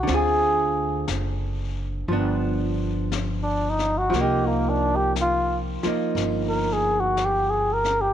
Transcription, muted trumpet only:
X:1
M:4/4
L:1/16
Q:"Swing" 1/4=59
K:Cm
V:1 name="Muted trumpet"
A4 z8 z D E _G | G B, D G F2 z3 B A _G =G A B G |]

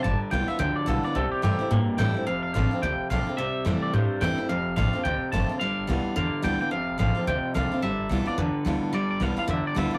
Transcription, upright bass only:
X:1
M:4/4
L:1/8
Q:"Swing" 1/4=216
K:Flyd
V:1 name="Upright bass" clef=bass
G,,, z C,, z D,, z B,,, z | C,, z G,, z A,, z A,, z | F,,, F,,, A,,, z D,, z B,,, z | C,, z F,, z A,, z E,, z |
F,,, F,,, A,,, z D,, z ^F,,, z | G,,, G,,, C,, z E,, z D,, z | F,,, F,,, A,,, z D,, z C,, z | G,,, G,,, C,, z E,, z D,, z |
G,,, G,,, C,, z E,, z D,, z |]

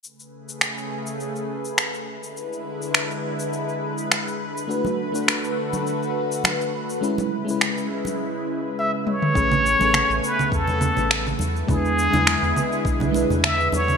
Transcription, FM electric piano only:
X:1
M:4/4
L:1/16
Q:"Swing 16ths" 1/4=103
K:A
V:1 name="FM electric piano"
z16 | z16 | [A,DFB]3 [A,DFB] z12 | [G,CEB]3 [G,CEB]4- [G,CEB] z8 |
[A,CGB]3 [A,CGB] z12 | [G,DEB]3 [G,DEB]6- [G,DEB] [G,DEB]6 |]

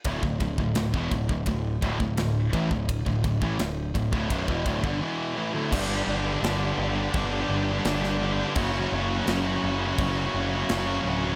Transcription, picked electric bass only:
X:1
M:4/4
L:1/16
Q:1/4=85
K:D
V:1 name="Picked electric bass" clef=bass
D,,, D,,, D,,, D,,, D,,, E,,, D,,, D,,, D,,,2 D,,, D,,, D,,,2 A,,, D,,,- | D,,, D,,, D,,, A,,, D,,,2 D,,, D,,, B,,,, E,,, D,,, G,,, z4 | [K:Glyd] G,,,2 G,,,2 G,,,2 G,,,2 G,,,2 G,,,2 G,,,4 | F,,,2 F,,,2 F,,,2 F,,,2 F,,,2 F,,,2 F,,,2 D,,,2 |]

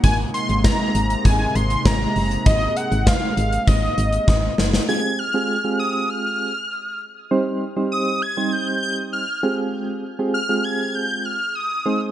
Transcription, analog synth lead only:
X:1
M:4/4
L:1/16
Q:1/4=99
K:Abmix
V:1 name="Analog synth lead"
a2 c'2 b4 a2 c'2 b4 | e2 g2 f4 e6 z2 | [K:Fm] a'2 f'4 e'2 f'6 z2 | z4 e'2 a'2 g'2 g'2 f'3 z |
z4 f'2 a'2 g'2 f'2 e'3 z |]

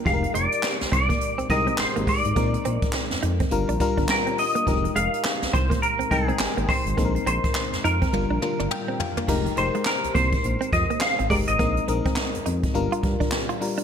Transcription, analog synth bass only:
X:1
M:4/4
L:1/16
Q:"Swing 16ths" 1/4=104
K:Fdor
V:1 name="Analog synth bass" clef=bass
F,,,2 F,,, z2 C,, C,,2 z C,, C,,2 A,,, A,,, z A,,, | B,,,2 B,,, z2 F,, F,,2 G,,, B,,, z G,,, z4 | F,,,2 F,,, z2 C,, C,,2 z C,, C,,2 A,,, A,,, z A,,, | B,,,2 B,,, z2 F,, F,,2 G,,, B,,, z G,,, z4 |
F,,,2 F,,, z2 C,, C,,2 B,,, z F,, z2 A,,, G,,, A,,, | B,,,2 B,,, z2 F,, F,,2 G,,, z G,, z4 z |]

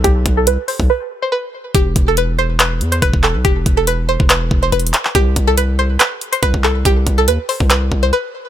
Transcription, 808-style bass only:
X:1
M:4/4
L:1/16
Q:1/4=141
K:Em
V:1 name="808-style bass" clef=bass
B,,,2 B,,,2 C,, z2 B,,, z8 | E,,,2 E,,,8 E,,2 E,,, E,,,2 B,,, | E,,,2 E,,,4- E,,, E,,,3 E,,,2 E,,,2 z2 | C,,2 C,,6 z4 C,, C,,3 |
C,,2 C,,2 _E,, z2 C,,3 C,,2 z4 |]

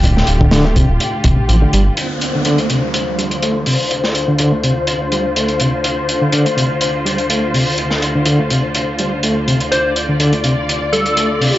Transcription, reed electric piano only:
X:1
M:4/4
L:1/16
Q:"Swing 16ths" 1/4=124
K:Dm
V:1 name="Reed electric piano" clef=bass
z3 D, D, A, C, z3 C, z F, D, G, z | z3 D, D, A, C, z3 G, z A,2 C, z | z3 D, D, A, C, z3 G, z A,2 C, z | z3 D, D, A, C, z3 G, z A,2 C, z |
z3 D, D, A, C, z3 G, z A,2 C, z | z3 D, D, A, C, z3 G, z A,2 C, z |]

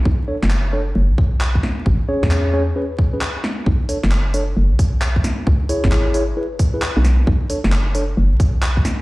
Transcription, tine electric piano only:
X:1
M:4/4
L:1/16
Q:"Swing 16ths" 1/4=133
K:Bdor
V:1 name="Tine electric piano"
z2 [DAc] z3 [DAc] z8 z | z2 [CGc]4 [CGc] z [CGB] z2 [CGB] z4 | z2 [DAc] z3 [DAc] z8 z | z2 [EGc]4 [EGc] z [EGB] z2 [EGB] z4 |
z2 [DAc] z3 [DAc] z8 z |]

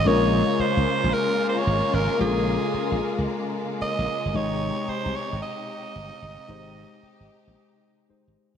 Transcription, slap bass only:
X:1
M:4/4
L:1/16
Q:"Swing 16ths" 1/4=112
K:Bbdor
V:1 name="Slap bass" clef=bass
B,,,3 z2 D,, z B,,, z4 A,,, z A,,, z | B,,,3 z2 B,,, z D,, z4 z B,,, z G,,, | A,,,3 z2 C,, z A,,, z4 G,,, z G,,, z | A,,,3 z2 A,,, z B,,, z4 z A,,, z G,,, |]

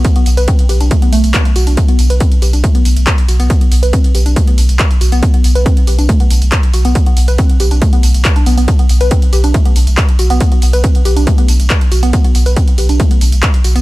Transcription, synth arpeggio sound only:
X:1
M:4/4
L:1/16
Q:1/4=139
K:Bphr
V:1 name="Synth arpeggio sound"
z B, z B C z G D A, B, A, z B, z F D | B, B, z B C z G D A, B, z4 F B, | B, B, z B C z G D A, B, z4 F B, | B, B, z B C z G D A, B, z4 F B, |
B, B, z B C z G D A, B, z3 D B, B, | B, B, z B C z G D A, B, z4 F B, | z B, z B C z G D A, B, z4 F B, | B, B, z B C z G D A, B, z4 F B, |]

